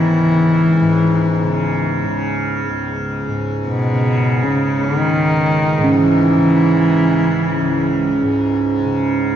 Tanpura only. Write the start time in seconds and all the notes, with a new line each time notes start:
Already playing: C#2 G#2 C#3
0.20 C#2
0.81 G#2
1.43 C#3
2.05 C#3
2.69 C#2
3.28 G#2
3.92 C#3
4.55 C#3
5.15 C#2
5.78 G#2
6.38 C#3
6.98 C#3
7.61 C#2
8.23 G#2
8.85 C#3